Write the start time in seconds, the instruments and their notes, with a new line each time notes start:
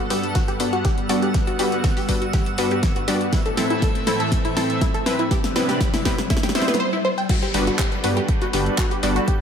Already playing: analog synth pad G2 G3 B3 A4 F#5, synth texture E6, riser
0.10 synth pluck G3 B3 D4 F#4 G4 B4, open hi-hat
0.23 closed hi-hat
0.35 synth pluck F#4, kick, snare, closed hi-hat
0.48 synth pluck G4, closed hi-hat
0.60 synth pluck G3 B3 D4 F#4 B4, open hi-hat
0.73 synth pluck F#4, closed hi-hat
0.85 synth pluck G4, kick, snare, closed hi-hat
0.98 closed hi-hat
1.09 synth pluck G3 B3 D4 F#4 D5, open hi-hat
1.22 synth pluck G4, closed hi-hat
1.34 analog synth pad F#4, kick, snare, closed hi-hat
1.47 synth pluck F#4, closed hi-hat
1.59 synth pluck G3 B3 D4 F#4 G4 B4, open hi-hat
1.72 closed hi-hat
1.84 synth pluck F#4, kick, snare, closed hi-hat
1.97 synth pluck G4, open hi-hat
2.09 synth pluck G3 B3 D4 F#4 B4, kick, open hi-hat
2.22 synth pluck F#4, closed hi-hat
2.33 synth pluck G4, kick, snare, closed hi-hat
2.46 closed hi-hat
2.58 synth pluck G3 B3 D4 F#4 B4, open hi-hat
2.71 synth pluck G4, closed hi-hat
2.83 kick, snare, closed hi-hat
2.96 synth pluck F#4, closed hi-hat
3.08 synth pluck G3 B3 D4 F#4 G4 D5, open hi-hat
3.21 closed hi-hat
3.33 analog synth pad A2 E3 C4 A4 E5, synth pluck E4, kick, snare, closed hi-hat
3.46 synth pluck A4, closed hi-hat
3.57 synth pluck C4 E4 A4, snare, open hi-hat
3.70 synth pluck E4, closed hi-hat
3.82 synth pluck A4, kick, snare, closed hi-hat
3.95 closed hi-hat
4.07 synth pluck C4 E4 A4, snare, open hi-hat
4.20 synth pluck A4, closed hi-hat
4.32 kick, snare, closed hi-hat
4.45 synth pluck E4, closed hi-hat
4.56 synth pluck C4 E4 A4, snare, open hi-hat
4.70 closed hi-hat
4.81 synth pluck E4, kick, snare, closed hi-hat
4.94 synth pluck A4, closed hi-hat
5.06 synth pluck C4 E4 B4, snare, open hi-hat
5.19 synth pluck E4, closed hi-hat
5.31 analog synth pad C3 G3 D4 B4, synth pluck G4, kick, snare, closed hi-hat
5.44 snare, closed hi-hat
5.56 synth pluck G3 B3 C4 E4 B4, snare, open hi-hat
5.69 synth pluck G4, snare, closed hi-hat
5.81 kick, snare, closed hi-hat
5.94 synth pluck E4, snare, open hi-hat
6.05 synth pluck G3 B3 C4 E4 G4 B4, kick, snare, open hi-hat
6.18 snare, closed hi-hat
6.30 synth pluck E4, kick, snare, closed hi-hat
6.37 snare
6.43 synth pluck G4, snare, closed hi-hat
6.49 snare
6.55 synth pluck G3 B3 C4 E4 C5 E5, snare, open hi-hat
6.62 snare
6.68 synth pluck B4, snare, closed hi-hat
6.74 snare
6.80 synth pluck C5
6.93 synth pluck E4
7.05 synth pluck C5
7.18 synth pluck G5
7.29 analog synth pad G3 D4 F#4 A4 B4, synth pluck F#4, synth texture G6, kick, closed hi-hat, crash, downlifter
7.42 synth pluck G4, closed hi-hat
7.54 detuned saw bass G1, synth pluck G3 B3 D4 F#4 B4, open hi-hat
7.67 synth pluck F#4, closed hi-hat
7.79 synth pluck G4, kick, clap, closed hi-hat
7.92 closed hi-hat
8.04 detuned saw bass G2, synth pluck G3 B3 D4 F#4 B4, open hi-hat
8.17 synth pluck G4, closed hi-hat
8.28 kick, closed hi-hat
8.42 synth pluck F#4, closed hi-hat
8.53 detuned saw bass G1, synth pluck G3 B3 D4 F#4 G4 B4, open hi-hat
8.66 closed hi-hat
8.78 synth pluck F#4, kick, clap, closed hi-hat
8.91 synth pluck G4, closed hi-hat
9.03 detuned saw bass G1, synth pluck G3 B3 D4 F#4 D5, open hi-hat
9.16 synth pluck F#4, closed hi-hat
9.28 synth pluck G4, kick, closed hi-hat